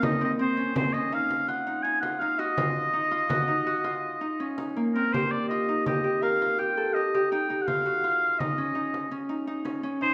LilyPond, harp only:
\new Staff \with { instrumentName = "Harp" } { \time 7/4 \key ees \dorian \tempo 4 = 166 ees'8 c'8 c'8 des'8 c'8 des'8 ees'4 f'8 ees'8 ees'8 f'8 ees'8 ges'8 | f'4 ees'8 f'8 ges'8 ees'8 ges'8 f'4 ees'8 des'8 ees'8 bes8 c'8 | \key des \mixolydian g'4 f'8 ees'8 g'8 g'8 bes'8 f'8 g'8 a'8 g'8 g'8 ees'8 ees'8 | f'8 ges'8 f'4 ees'8 des'8 ees'4 des'8 ees'8 ees'8 des'8 des'8 ees'8 | }